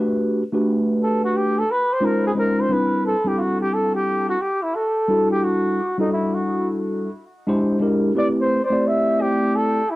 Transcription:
0.00 0.41 A3 medium
0.00 0.42 D4 medium
0.00 0.42 F#4 medium
0.00 0.42 G4 medium
0.00 0.43 B4 medium
0.52 1.62 A3 medium
0.52 1.62 D4 medium
0.52 1.63 F#4 medium
0.52 1.63 G4 medium
0.52 1.64 B4 medium
1.02 1.22 A4 medium
1.24 1.38 F#4 medium
1.36 1.60 G4 loud
1.59 1.73 A4 loud
1.71 1.94 B4 loud
1.93 2.06 C5 loud
2.00 2.31 G#3 medium
2.00 2.31 C#4 medium
2.00 2.32 D#4 medium
2.00 2.32 F4 medium
2.00 2.33 C5 loud
2.05 2.26 A#4 medium
2.27 2.32 G#4 loud
2.35 2.65 G#3 medium
2.35 2.66 C#4 medium
2.35 2.66 D#4 medium
2.35 2.66 F4 medium
2.35 2.62 A#4 loud
2.35 2.67 C5 medium
2.60 2.74 C5 loud
2.69 3.14 G3 medium
2.69 3.14 C4 medium
2.69 3.15 D4 medium
2.69 3.15 E4 medium
2.69 3.15 B4 medium
2.69 3.05 B4 medium
3.06 3.29 A4 medium
3.24 4.35 G3 medium
3.24 4.35 C4 medium
3.24 4.36 D4 medium
3.24 4.36 E4 medium
3.24 3.36 G4 medium
3.24 4.36 A4 medium
3.37 3.41 F4 medium
3.37 3.61 F#4 medium
3.61 3.75 G4 medium
3.74 3.94 A4 medium
3.95 4.27 G4 medium
4.30 4.42 F#4 loud
4.41 4.64 G4 medium
4.63 4.76 E4 medium
4.75 5.31 A4 medium
5.08 5.79 G3 medium
5.08 5.79 D4 medium
5.08 5.80 E4 medium
5.08 5.80 F#4 medium
5.08 5.80 A4 medium
5.31 5.45 G4 medium
5.43 5.99 F#4 medium
5.98 7.08 G3 medium
5.98 7.08 D4 medium
5.98 6.11 D#4 medium
5.98 7.08 E4 medium
5.98 7.09 F#4 medium
5.98 7.09 A4 medium
6.13 6.36 E4 medium
6.34 6.68 F#4 medium
7.47 7.77 G#3 loud
7.47 7.77 D4 medium
7.47 7.78 E4 medium
7.47 7.78 G4 medium
7.47 7.78 C5 loud
7.80 8.11 G#3 medium
7.80 8.11 D4 medium
7.80 8.11 E4 medium
7.80 8.12 G4 medium
7.80 8.12 A#4 medium
8.15 8.60 A3 medium
8.15 8.60 C4 medium
8.15 8.60 E4 medium
8.15 8.61 G4 medium
8.15 8.61 B4 medium
8.15 8.28 D5 medium
8.41 8.61 C5 medium
8.65 8.89 C5 medium
8.70 9.80 A3 medium
8.70 9.81 C4 medium
8.70 9.81 E4 medium
8.70 9.81 G4 medium
8.70 9.82 D5 medium
8.87 9.23 E5 medium
9.21 9.57 G4 loud
9.56 9.92 A4 medium
9.90 9.96 E4 medium

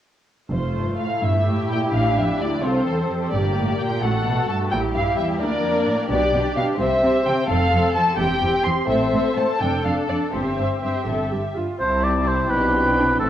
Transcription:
0.51 0.73 F1 soft
0.51 0.59 F2 soft
0.51 1.90 A3 soft
0.51 1.19 F4 soft
0.51 0.96 C5 soft
0.75 0.99 G2 soft
0.99 1.23 A2 soft
0.99 1.22 F5 medium
1.22 1.45 G1 soft
1.22 1.46 G2 soft
1.22 2.63 E4 soft
1.22 2.59 G4 soft
1.22 1.71 E5 soft
1.47 1.70 A2 soft
1.71 1.94 A#2 soft
1.71 1.79 G5 medium
1.93 2.15 A1 soft
1.93 2.17 A2 soft
1.93 2.62 D4 soft
1.93 2.16 F5 medium
2.17 2.25 F2 soft
2.17 2.40 E5 medium
2.40 2.63 D2 soft
2.40 2.64 D5 medium
2.63 2.86 C2 soft
2.63 3.33 C4 soft
2.63 2.86 F4 soft
2.63 3.33 A4 soft
2.63 3.33 C5 medium
2.86 3.09 E2 soft
2.86 2.94 A4 soft
3.09 3.33 F2 soft
3.09 4.01 G4 soft
3.32 3.54 G1 soft
3.32 3.56 G2 soft
3.32 4.01 A#3 soft
3.32 4.03 G4 soft
3.32 3.79 D5 medium
3.57 3.79 A2 soft
3.79 4.02 A#2 soft
3.79 4.03 G5 medium
4.03 4.24 A1 soft
4.03 4.26 A2 soft
4.03 4.70 A3 soft
4.03 4.70 F#4 soft
4.03 4.71 A4 soft
4.03 4.49 F#5 medium
4.26 4.48 B2 soft
4.48 4.71 G2 soft
4.48 4.56 A5 medium
4.71 4.93 A#1 medium
4.71 4.79 A#2 soft
4.71 5.41 G3 soft
4.71 5.41 E4 soft
4.71 5.39 G4 medium
4.71 4.80 G5 medium
4.94 5.02 G2 soft
4.94 5.17 F5 medium
5.17 5.40 E2 soft
5.17 5.25 E5 medium
5.39 5.64 D2 soft
5.39 6.10 A#3 soft
5.39 6.09 D4 soft
5.39 6.11 A#4 medium
5.39 6.09 D5 medium
5.64 5.87 F2 soft
5.87 5.95 A2 soft
6.10 6.32 B1 medium
6.10 6.18 B2 medium
6.10 6.32 D4 soft
6.10 6.78 G4 medium
6.10 6.32 G4 soft
6.10 6.56 D5 medium
6.33 6.41 B2 soft
6.33 6.55 D4 soft
6.33 6.55 G4 soft
6.56 6.64 B2 soft
6.56 6.79 D4 soft
6.56 6.78 G4 soft
6.56 6.65 F5 medium
6.79 7.01 C2 soft
6.79 6.88 C3 soft
6.79 7.01 C4 soft
6.79 7.01 G4 soft
6.79 7.49 C5 medium
6.79 7.25 E5 medium
7.02 7.12 C3 soft
7.02 7.24 C4 soft
7.02 7.24 G4 soft
7.25 7.35 C3 soft
7.25 7.48 C4 soft
7.25 7.48 G4 soft
7.25 7.49 G5 medium
7.49 7.70 F1 soft
7.49 7.58 F2 medium
7.49 7.70 C4 soft
7.49 7.70 A4 soft
7.49 8.16 A4 medium
7.49 7.94 F5 medium
7.71 7.81 F2 soft
7.71 7.93 C4 soft
7.71 7.93 A4 soft
7.95 8.04 F2 soft
7.95 8.17 C4 soft
7.95 8.17 A4 soft
7.95 8.18 A5 medium
8.18 8.40 E1 soft
8.18 8.26 E2 soft
8.18 8.40 C4 soft
8.18 8.40 G4 soft
8.18 8.89 G4 medium
8.18 8.64 G5 medium
8.41 8.50 E2 soft
8.41 8.63 C4 soft
8.41 8.64 G4 soft
8.65 8.73 E2 soft
8.65 8.87 C4 soft
8.65 8.88 G4 soft
8.65 8.89 C6 medium
8.88 9.10 A1 soft
8.88 8.97 A2 soft
8.88 9.11 C4 soft
8.88 9.11 A4 soft
8.88 9.58 C5 medium
8.88 9.35 E5 medium
9.12 9.21 A2 soft
9.12 9.35 C4 soft
9.12 9.35 A4 soft
9.36 9.45 A2 soft
9.36 9.60 C4 soft
9.36 9.59 A4 soft
9.36 9.60 A5 medium
9.60 9.83 F1 soft
9.60 9.69 F2 soft
9.60 9.83 D4 soft
9.60 10.32 A4 soft
9.60 9.83 A4 soft
9.60 9.84 G5 medium
9.84 9.93 F2 soft
9.84 10.08 D4 soft
9.84 10.08 A4 soft
9.84 9.93 F5 soft
10.09 10.17 F2 soft
10.09 10.33 D4 soft
10.09 10.33 A4 soft
10.09 10.17 D5 soft
10.33 10.56 G1 soft
10.33 10.42 G2 soft
10.33 10.57 C4 soft
10.33 11.44 G4 soft
10.33 10.57 C5 soft
10.33 11.54 E5 soft
10.58 10.66 G2 soft
10.58 10.81 C4 soft
10.58 10.81 C5 soft
10.82 10.91 G2 soft
10.82 11.07 C4 soft
10.82 11.07 C5 soft
11.07 11.30 G1 soft
11.07 11.15 G2 soft
11.07 11.30 A4 soft
11.32 11.40 G2 soft
11.32 11.57 G4 soft
11.55 11.65 G2 soft
11.55 11.80 F4 soft
11.80 12.47 C2 soft
11.80 12.47 C3 soft
11.80 12.47 C4 soft
11.80 13.16 C4 soft
11.80 13.16 E4 soft
11.80 12.47 E4 soft
11.80 12.05 C5 medium
11.80 12.48 A5 soft
12.04 12.29 D5 medium
12.28 12.52 C5 soft
12.50 13.21 B1 soft
12.50 13.21 B2 soft
12.50 13.19 D4 soft
12.50 12.73 G4 soft
12.50 13.19 B4 medium
12.50 13.21 G5 soft
12.74 12.82 G4 soft
12.97 13.05 D4 soft
13.19 13.30 A1 medium
13.19 13.30 A2 medium
13.19 13.30 C4 soft
13.19 13.30 E4 soft
13.19 13.30 E4 medium
13.19 13.30 A4 medium
13.19 13.30 A5 soft

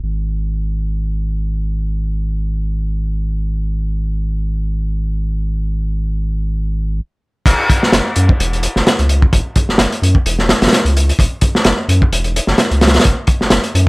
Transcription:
0.03 7.00 G#1 medium
7.46 7.54 F#1 loud
7.46 kick loud
7.46 closed hi-hat medium
7.46 crash medium
7.70 kick loud
7.70 closed hi-hat medium
7.83 snare medium
7.92 8.01 F#1 medium
7.92 snare loud
7.92 closed hi-hat medium
8.16 8.32 F#2 medium
8.16 closed hi-hat medium
8.29 kick loud
8.40 8.68 E1 loud
8.40 closed hi-hat medium
8.53 closed hi-hat soft
8.63 closed hi-hat medium
8.76 8.82 F#1 loud
8.76 snare soft
8.87 snare loud
8.87 closed hi-hat medium
8.99 9.26 C#2 medium
8.99 closed hi-hat soft
9.09 closed hi-hat medium
9.22 kick loud
9.33 9.41 F#1 loud
9.33 kick loud
9.33 closed hi-hat medium
9.56 kick loud
9.56 closed hi-hat medium
9.69 9.77 F#1 soft
9.69 snare soft
9.78 9.87 F#1 medium
9.78 snare loud
9.78 closed hi-hat medium
9.92 closed hi-hat soft
10.02 10.18 F#2 medium
10.02 closed hi-hat medium
10.15 kick medium
10.26 10.54 E1 loud
10.26 closed hi-hat medium
10.39 snare soft
10.49 snare loud
10.49 closed hi-hat medium
10.62 10.68 F#1 loud
10.62 snare loud
10.62 closed hi-hat medium
10.67 snare medium
10.67 closed hi-hat medium
10.73 snare loud
10.73 closed hi-hat medium
10.85 11.12 C#2 medium
10.85 closed hi-hat soft
10.97 closed hi-hat medium
11.09 closed hi-hat soft
11.19 11.27 F#1 loud
11.19 kick loud
11.19 closed hi-hat medium
11.41 kick loud
11.41 closed hi-hat medium
11.55 snare medium
11.64 11.73 F#1 medium
11.64 snare loud
11.64 closed hi-hat medium
11.88 12.04 F#2 medium
11.88 closed hi-hat medium
12.02 kick medium
12.12 12.40 E1 loud
12.12 closed hi-hat medium
12.24 closed hi-hat soft
12.36 closed hi-hat medium
12.47 12.54 F#1 loud
12.47 snare soft
12.58 snare loud
12.58 closed hi-hat medium
12.71 12.98 C#2 medium
12.71 closed hi-hat soft
12.81 snare medium
12.81 closed hi-hat medium
12.87 snare medium
12.87 closed hi-hat medium
12.94 snare medium
12.94 closed hi-hat medium
13.00 snare medium
13.00 closed hi-hat medium
13.04 13.13 F#1 loud
13.04 kick loud
13.04 closed hi-hat medium
13.27 kick loud
13.27 closed hi-hat medium
13.41 13.49 F#1 soft
13.41 snare soft
13.50 13.59 F#1 medium
13.50 snare loud
13.50 closed hi-hat medium
13.64 closed hi-hat soft
13.75 13.89 F#2 medium
13.75 closed hi-hat medium

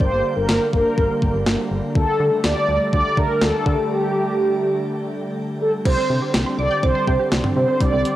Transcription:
0.00 0.10 G1 loud
0.00 5.81 D3 medium
0.00 1.91 G3 medium
0.00 1.91 A#3 medium
0.00 0.34 C5 loud
0.00 kick loud
0.12 0.22 G1 medium
0.37 0.47 G1 medium
0.37 0.72 A#4 medium
0.49 0.59 G1 loud
0.49 snare loud
0.73 0.84 G1 medium
0.73 1.67 A#4 medium
0.73 kick medium
0.98 1.08 G1 loud
0.98 kick medium
1.22 1.32 G1 loud
1.22 kick medium
1.34 1.45 G1 loud
1.46 1.57 G1 loud
1.46 snare loud
1.71 1.81 G1 medium
1.95 2.06 D2 loud
1.95 5.82 G3 medium
1.95 5.82 A3 medium
1.95 2.45 A4 loud
1.95 kick loud
2.20 2.30 D3 loud
2.44 2.54 D2 loud
2.44 2.92 D5 loud
2.44 snare loud
2.68 2.79 D2 loud
2.93 3.03 D2 loud
2.93 3.18 D5 loud
2.93 kick medium
3.17 3.27 D3 medium
3.17 3.42 A#4 loud
3.17 kick medium
3.42 3.52 D2 loud
3.42 3.92 A4 loud
3.42 snare loud
3.66 3.76 D3 loud
3.66 kick loud
3.90 5.33 G4 loud
5.61 5.72 A4 medium
5.85 5.96 C2 loud
5.85 8.16 D3 medium
5.85 8.16 G3 medium
5.85 5.93 G3 medium
5.85 8.16 C4 medium
5.85 6.31 C5 loud
5.85 kick loud
5.85 crash medium
5.98 6.05 C4 medium
6.10 6.20 C3 loud
6.22 6.30 G4 medium
6.34 6.44 C2 loud
6.34 6.42 G5 medium
6.34 snare loud
6.46 6.54 C6 medium
6.58 6.69 C2 loud
6.58 6.84 D5 loud
6.58 6.66 D6 medium
6.71 6.79 G6 medium
6.83 6.93 C2 loud
6.83 7.28 C5 loud
6.83 6.91 D6 loud
6.83 kick medium
6.95 7.03 C6 medium
7.07 7.18 C3 loud
7.07 7.15 G5 medium
7.07 kick medium
7.19 7.27 G4 medium
7.32 7.42 C2 loud
7.32 7.39 D4 medium
7.32 snare loud
7.44 7.52 C4 medium
7.44 mid tom medium
7.56 7.66 C3 loud
7.56 7.64 G3 medium
7.56 7.82 C5 medium
7.68 7.76 C4 medium
7.80 7.91 C2 loud
7.80 7.88 G3 medium
7.80 8.16 D5 loud
7.80 kick loud
7.80 closed hi-hat medium
7.93 8.03 C2 loud
7.93 8.00 C4 medium
8.05 closed hi-hat medium

